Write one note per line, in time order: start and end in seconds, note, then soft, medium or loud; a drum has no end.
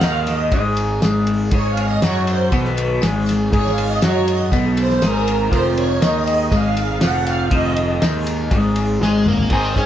0.00 0.49 D#2 medium
0.00 1.93 G#2 medium
0.00 0.52 D#3 medium
0.00 0.67 G#3 medium
0.00 0.52 D#4 medium
0.00 0.26 F5 loud
0.00 snare loud
0.00 ride medium
0.00 tambourine medium
0.05 2.56 D#3 medium
0.27 0.51 D#5 medium
0.27 snare soft
0.27 ride medium
0.27 tambourine medium
0.52 0.99 G#1 medium
0.52 1.01 G#2 medium
0.52 1.02 G#3 loud
0.52 kick medium
0.52 ride medium
0.52 tambourine medium
0.67 1.30 G#3 medium
0.77 ride medium
0.77 tambourine medium
1.02 1.49 G#1 medium
1.02 1.51 G#2 medium
1.02 1.52 G#3 medium
1.02 snare loud
1.02 ride medium
1.02 tambourine medium
1.27 3.17 G#3 medium
1.27 ride medium
1.51 1.99 G#1 medium
1.51 2.02 G#2 medium
1.51 2.02 G#3 loud
1.51 1.70 C#5 loud
1.51 kick loud
1.51 ride medium
1.51 tambourine soft
1.70 1.77 F5 loud
1.77 ride medium
1.83 2.00 D#5 loud
1.94 4.41 G#2 medium
2.02 2.49 F#2 medium
2.02 2.52 F#3 medium
2.02 2.52 F#4 medium
2.02 2.29 C#5 loud
2.02 snare loud
2.02 ride medium
2.02 tambourine medium
2.27 2.51 C5 medium
2.27 ride medium
2.27 tambourine medium
2.52 2.99 B1 medium
2.52 3.01 B2 medium
2.52 5.03 D#3 medium
2.52 3.02 B3 loud
2.52 kick loud
2.52 ride medium
2.52 tambourine medium
2.65 snare soft
2.77 ride medium
2.77 tambourine medium
3.01 3.49 G#1 medium
3.01 3.51 G#2 medium
3.01 3.51 G#3 medium
3.01 snare medium
3.01 ride medium
3.01 tambourine loud
3.17 3.79 G#3 medium
3.26 snare soft
3.26 ride medium
3.26 tambourine medium
3.52 3.99 G#1 medium
3.52 4.01 G#2 medium
3.52 4.02 G#3 loud
3.52 3.70 C#5 loud
3.52 kick loud
3.52 ride medium
3.52 tambourine soft
3.66 snare soft
3.70 3.85 F5 loud
3.77 5.65 G#3 medium
3.77 ride medium
3.77 tambourine soft
3.87 4.02 D#5 medium
4.01 4.50 F#2 loud
4.01 4.51 F#3 medium
4.01 4.52 F#4 loud
4.01 4.28 C#5 medium
4.01 snare loud
4.01 ride medium
4.01 tambourine loud
4.28 4.39 D#5 medium
4.28 ride medium
4.28 tambourine medium
4.42 6.90 G#2 medium
4.52 4.99 B1 loud
4.52 5.01 B2 medium
4.52 5.02 B3 loud
4.52 kick loud
4.52 ride medium
4.52 tambourine medium
4.77 5.03 C5 medium
4.77 ride medium
4.77 tambourine medium
4.90 snare soft
5.02 5.49 G#1 medium
5.02 5.50 G#2 medium
5.02 7.55 D#3 medium
5.02 5.51 G#3 medium
5.02 5.54 A#4 medium
5.02 snare loud
5.02 ride medium
5.02 tambourine loud
5.27 ride medium
5.27 tambourine medium
5.50 5.98 F1 loud
5.50 6.01 F2 medium
5.50 6.01 F3 loud
5.50 5.62 C5 medium
5.50 kick medium
5.50 ride medium
5.50 tambourine soft
5.65 6.28 G#3 medium
5.76 6.00 C#5 medium
5.76 ride medium
5.76 tambourine soft
5.99 6.49 D#2 loud
5.99 6.51 D#3 medium
5.99 6.51 D#4 medium
5.99 6.52 D#5 loud
5.99 snare loud
5.99 ride medium
5.99 tambourine loud
6.26 8.15 G#3 medium
6.26 ride medium
6.26 tambourine medium
6.50 6.98 G#1 medium
6.50 7.00 G#2 medium
6.50 7.01 G#3 loud
6.50 7.03 F5 loud
6.50 kick loud
6.50 ride medium
6.50 tambourine medium
6.77 ride medium
6.77 tambourine medium
6.91 9.41 G#2 medium
7.00 7.49 F1 medium
7.00 7.50 F2 medium
7.00 7.51 F3 loud
7.00 7.27 F#5 loud
7.00 snare loud
7.00 ride medium
7.00 tambourine medium
7.26 7.52 F5 loud
7.26 ride medium
7.26 tambourine medium
7.51 7.98 F1 loud
7.51 8.01 F2 medium
7.51 8.01 F3 loud
7.51 7.98 D#5 medium
7.51 kick loud
7.51 ride medium
7.51 tambourine soft
7.55 9.86 D#3 medium
7.77 ride medium
7.77 tambourine soft
8.01 8.49 D#2 medium
8.01 8.51 D#3 medium
8.01 8.51 D#4 medium
8.01 snare loud
8.01 ride medium
8.01 tambourine medium
8.15 8.79 G#3 medium
8.27 ride medium
8.27 tambourine medium
8.50 8.98 G#1 loud
8.50 8.99 G#2 medium
8.50 9.00 G#3 loud
8.50 kick loud
8.50 ride medium
8.50 tambourine medium
8.76 9.86 G#3 medium
8.76 ride medium
8.76 tambourine medium
9.00 9.48 G#1 loud
9.00 9.49 G#2 medium
9.00 9.50 G#3 medium
9.00 snare medium
9.00 tambourine medium
9.26 9.53 A#3 medium
9.26 mid tom medium
9.26 tambourine medium
9.38 9.86 G#2 medium
9.38 floor tom medium
9.50 9.72 G#1 medium
9.50 9.86 G#2 medium
9.50 9.86 D#3 medium
9.50 9.79 G#3 medium
9.50 9.77 C4 medium
9.50 9.77 D#4 medium
9.50 9.86 G#4 medium
9.50 9.75 G#4 loud
9.50 9.86 C5 medium
9.50 9.86 D#5 medium
9.50 9.86 C6 medium
9.50 kick medium
9.50 crash medium
9.50 tambourine soft
9.76 9.86 G#2 medium
9.76 9.86 G#3 soft
9.76 9.86 C4 medium
9.76 9.86 C#4 medium
9.76 9.86 D#4 medium
9.76 9.86 G#4 medium
9.76 kick medium
9.76 closed hi-hat medium
9.76 tambourine medium